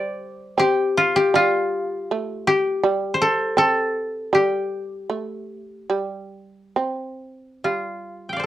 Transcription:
Already playing: G3 G4 A4 C5 D5
0.57 C4 G4
0.97 F4
1.16 G4
1.34 G3 F4
2.11 A3
2.47 G4
2.83 G3
3.14 C5
3.21 A4
3.57 C4 A4
4.33 G3 G4
5.10 A3
5.90 G3
6.76 C4
7.64 G3 F4
8.29 F5 G5
8.36 C5 D5

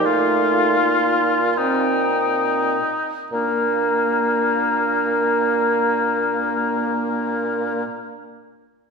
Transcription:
Already playing: A#2 D#4
0.05 A3 F4 F5
0.78 A#3
1.58 C4 D#4 G5
3.31 A#2 A#3 D4 A#5

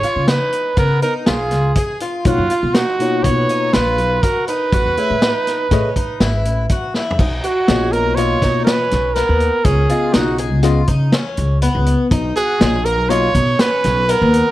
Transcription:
Already playing: C#5
0.03 F4, closed hi-hat
0.16 C#3
0.28 D#4 B4, snare, closed hi-hat
0.52 closed hi-hat
0.77 C#3 B3 A#4, kick, closed hi-hat
1.02 D#4 A#4, closed hi-hat
1.26 B1 F4 G#4, snare, closed hi-hat
1.51 C#2, snare, closed hi-hat
1.75 G#4, kick, closed hi-hat
2.00 F4, closed hi-hat
2.25 B1 B2 A#3 D#4 F4 F#4 C#5, kick, closed hi-hat
2.38 F#2
2.50 F4, closed hi-hat
2.63 B2
2.74 D#4 F#4, snare, closed hi-hat
3.00 B2 A#3 D#4 F4 C#5, closed hi-hat
3.24 B2 B3 C#5, kick, closed hi-hat
3.49 D#4, closed hi-hat
3.73 A#1 F4 B4, snare, closed hi-hat
3.98 B1, closed hi-hat
4.23 F#4 A#4, kick, closed hi-hat
4.48 D#4 B4, closed hi-hat
4.72 A1 F#4, kick, closed hi-hat
4.86 E2
4.97 A3 E4 G#4 B4 C#5, closed hi-hat
5.10 A2
5.22 D#4, snare, closed hi-hat
5.47 snare, closed hi-hat
5.71 A2 A3 C#4 G#4 B4 D#5, kick, snare, closed hi-hat
5.96 D#4, kick, closed hi-hat
6.20 G#1 E4, snare, closed hi-hat
6.45 A1, closed hi-hat
6.69 F#4, kick, closed hi-hat
6.94 E4, snare
7.11 floor tom
7.19 B1 D#4, kick, crash
7.43 F#4, closed hi-hat
7.68 A#1 A#3 B3 F4 G#4 C#5 D#5, snare, closed hi-hat
7.92 A#4, closed hi-hat
8.06 B1
8.15 B2 A#3 F4 C#5 D#5, closed hi-hat
8.42 B2 D#4, kick, snare, closed hi-hat
8.65 C#4 B4, snare, closed hi-hat
8.91 B1, snare, closed hi-hat
9.14 B3 A#4, snare, closed hi-hat
9.29 D#2
9.40 closed hi-hat
9.65 C#2 C#4 G#4, kick, closed hi-hat
9.89 C#3 B3 F4 D#5, closed hi-hat
10.13 B1 D#4 F#4, snare, closed hi-hat
10.38 G#4, closed hi-hat
10.52 C#2
10.63 C#3 B3 F4 D#5, snare, closed hi-hat
10.87 C#3 D#4, kick, closed hi-hat
11.12 C#4, snare, closed hi-hat
11.37 C#2, closed hi-hat
11.62 B3, closed hi-hat
11.75 C#2
11.86 closed hi-hat
12.11 B1 D#4, kick, closed hi-hat
12.36 F#4 G#4, closed hi-hat
12.60 A#1 B2 A#3 F4 G#4 C#5 D#5, snare, closed hi-hat
12.85 A#4, closed hi-hat
12.98 B1
13.09 B2 A#3 F4 C#5 D#5, closed hi-hat
13.35 B2 D#4, kick, closed hi-hat
13.59 C#4 B4, snare, closed hi-hat
13.84 B1, snare, closed hi-hat
14.09 B3 A#4, closed hi-hat
14.21 D#2
14.34 closed hi-hat

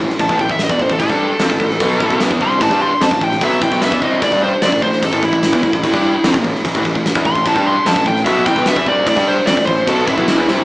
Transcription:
0.00 A1 A2 E3
0.10 snare
0.19 A1 A2 E3 A5, kick, crash
0.29 A1 A2 E3, kick
0.39 A1 A2 E3 G5, kick
0.49 A1 A2 E3 E5, kick
0.59 snare, crash
0.64 D#5
0.69 E2 E3 B3 D5, kick
0.79 A1 A2 E3 C5, kick
0.90 A1 A2 E3 A4, kick
0.99 A1 A2 E3 A4, kick, crash
1.09 G2 G3 D4 G4, kick
1.30 muted picked electric bass stroke, muted overdriven electric guitar stroke, muted distorted electric guitar stroke
1.40 F2 F3 C4, snare, crash
1.50 A1 A2 E3, kick
1.60 A1 A2 E3, kick
1.70 snare
1.80 B1 B2 F#3 B3, kick, crash
2.00 A1 A2 E3, kick
2.10 B1 B2 F#3 B3, kick
2.20 snare, crash
2.30 E2 E3 B3, kick
2.39 C2 C3 G3 C4 C6, kick
2.59 A1 A2 E3 A5, kick, crash
2.70 G2 G3 D4 G4, kick
2.82 C6
2.91 muted distorted electric guitar stroke, muted overdriven electric guitar stroke, muted picked electric bass stroke
3.01 F2 F3 C4 A5, snare, crash
3.11 A1 A2 E3, kick
3.21 A1 A2 E3 G5, kick
3.31 snare
3.41 B1 B2 F#3 B3 E5, kick, crash
3.62 A1 A2 E3 G5, kick
3.72 B1 B2 F#3 B3, kick
3.82 E5, snare, crash
3.92 E2 E3 B3, kick
4.02 C2 C3 G3 C4 D#5, kick
4.22 A1 A2 E3 D5, kick, crash
4.32 G2 G3 D4 G4, kick
4.43 C5
4.52 muted overdriven electric guitar stroke, muted picked electric bass stroke, muted distorted electric guitar stroke
4.62 F2 F3 C4 D5, snare, crash
4.72 A1 A2 E3, kick
4.82 A1 A2 E3 C5, kick
4.93 snare
5.03 A1 A2 E3 A4, kick, crash
5.13 A1 A2 E3, kick
5.22 A1 A2 E3 E4, kick
5.33 A1 A2 E3, kick
5.43 snare, crash
5.52 E2 E3 B3, kick
5.63 A1 A2 E3, kick
5.73 A1 A2 E3, kick
5.83 A1 A2 E3, kick, crash
5.92 G2 G3 D4 G4, kick
6.14 muted overdriven electric guitar stroke, muted distorted electric guitar stroke, muted picked electric bass stroke
6.24 F2 F3 C4, snare, crash
6.34 A1 A2 E3, kick
6.44 A1 A2 E3, kick
6.55 snare
6.65 A1 A2 E3, kick, crash
6.75 A1 A2 E3, kick
6.85 A1 A2 E3, kick
6.95 A1 A2 E3, kick
7.06 snare, crash
7.15 E2 E3 B3, kick
7.25 A1 A2 E3 C6, kick
7.35 A1 A2 E3, kick
7.46 A1 A2 E3 A5, kick, crash
7.55 G2 G3 D4 G4, kick
7.67 C6
7.75 muted distorted electric guitar stroke, muted overdriven electric guitar stroke, muted picked electric bass stroke
7.86 F2 F3 C4 A5, snare, crash
7.96 A1 A2 E3, kick
8.06 A1 A2 E3 G5, kick
8.16 snare
8.25 B1 B2 F#3 B3 E5, kick, crash
8.46 A1 A2 E3 G5, kick
8.56 B1 B2 F#3 B3, kick
8.66 E5, snare, crash
8.76 E2 E3 B3, kick
8.86 C2 C3 G3 C4 D5, kick
9.06 A1 A2 E3 D5, kick, crash
9.16 G2 G3 D4 G4, kick
9.28 C5
9.37 muted distorted electric guitar stroke, muted overdriven electric guitar stroke, muted picked electric bass stroke
9.47 F2 F3 C4 D5, snare, crash
9.57 A1 A2 E3, kick
9.66 A1 A2 E3 C5, kick
9.88 B1 B2 F#3 B3 A4, kick, crash
10.07 A1 A2 E3 E4, kick
10.18 B1 B2 F#3 B3, kick
10.28 snare, crash
10.38 E2 E3 B3
10.48 C2 C3 G3 C4, snare
10.59 floor tom

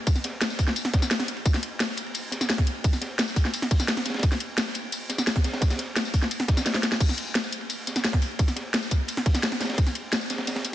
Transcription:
0.07 kick, closed hi-hat, ride, tambourine
0.15 snare, tambourine
0.24 snare, closed hi-hat, ride
0.41 snare, closed hi-hat, ride, tambourine
0.50 snare, tambourine
0.59 kick, open hi-hat, ride, tambourine
0.68 snare
0.76 closed hi-hat, ride, tambourine
0.85 snare
0.94 kick, snare, closed hi-hat, ride, tambourine
1.02 snare, tambourine
1.11 snare, closed hi-hat, ride, tambourine
1.19 snare, ride
1.28 snare, closed hi-hat, ride
1.37 ride
1.46 kick, closed hi-hat, ride, tambourine
1.54 snare, tambourine
1.63 closed hi-hat, ride
1.80 snare, closed hi-hat, ride, tambourine
1.88 snare
1.97 closed hi-hat, ride, tambourine
2.06 ride
2.14 closed hi-hat, ride, tambourine
2.32 snare, closed hi-hat, ride, tambourine
2.41 snare, tambourine
2.49 snare, closed hi-hat, ride, tambourine
2.58 kick, snare
2.67 closed hi-hat, ride
2.84 kick, closed hi-hat, ride, tambourine
2.93 snare, tambourine
3.01 snare, closed hi-hat, ride
3.18 snare, closed hi-hat, ride, tambourine
3.28 snare, tambourine
3.36 kick, open hi-hat, ride, tambourine
3.45 snare
3.54 closed hi-hat, ride, tambourine
3.62 snare
3.71 kick, closed hi-hat, open hi-hat, ride, tambourine
3.80 snare, tambourine
3.88 snare, closed hi-hat, ride, tambourine
3.97 snare
4.05 snare, closed hi-hat, ride
4.10 snare, ride
4.14 snare, ride
4.19 snare, ride
4.23 kick, closed hi-hat, ride, tambourine
4.32 snare, tambourine
4.40 closed hi-hat, ride
4.57 snare, closed hi-hat, ride, tambourine
4.67 snare
4.74 closed hi-hat, ride, tambourine
4.92 closed hi-hat, ride, tambourine
5.09 snare, closed hi-hat, ride, tambourine
5.18 snare, tambourine
5.27 snare, closed hi-hat, ride, tambourine
5.36 kick, snare
5.44 snare, closed hi-hat, ride
5.53 snare, ride
5.61 kick, snare, closed hi-hat, ride, tambourine
5.70 snare, ride, tambourine
5.79 snare, closed hi-hat, ride
5.96 snare, closed hi-hat, ride, tambourine
6.04 snare, tambourine
6.13 kick, open hi-hat, ride, tambourine
6.22 snare
6.31 closed hi-hat, ride, tambourine
6.40 snare
6.48 kick, snare, closed hi-hat, ride, tambourine
6.57 snare, ride, tambourine
6.61 snare, ride
6.66 snare, closed hi-hat, ride, tambourine
6.74 snare
6.83 snare, closed hi-hat, ride
6.92 snare
7.00 kick, closed hi-hat, crash, ride, tambourine
7.09 snare, tambourine
7.18 closed hi-hat, ride
7.35 snare, closed hi-hat, ride, tambourine
7.44 snare, tambourine
7.52 closed hi-hat, ride, tambourine
7.61 ride
7.69 closed hi-hat, ride, tambourine
7.87 snare, closed hi-hat, ride, tambourine
7.96 snare, tambourine
8.04 snare, closed hi-hat, ride, tambourine
8.13 kick, snare
8.22 open hi-hat, ride
8.39 kick, closed hi-hat, ride, tambourine
8.48 snare, tambourine
8.56 snare, closed hi-hat, ride
8.74 snare, closed hi-hat, ride, tambourine
8.83 snare, tambourine
8.91 kick, closed hi-hat, ride, tambourine
9.08 closed hi-hat, ride, tambourine
9.17 snare
9.26 kick, closed hi-hat, open hi-hat, ride, tambourine
9.34 snare, tambourine
9.43 snare, closed hi-hat, ride, tambourine
9.52 snare
9.60 snare, open hi-hat, ride
9.65 snare, ride
9.69 snare, ride
9.74 snare, ride
9.78 kick, closed hi-hat, ride, tambourine
9.87 snare, tambourine
9.95 closed hi-hat, ride
10.12 snare, closed hi-hat, ride, tambourine
10.21 snare, tambourine
10.30 snare, closed hi-hat, ride, tambourine
10.38 snare, ride
10.47 snare, closed hi-hat, ride, tambourine
10.56 snare, ride
10.65 snare, closed hi-hat, ride, tambourine

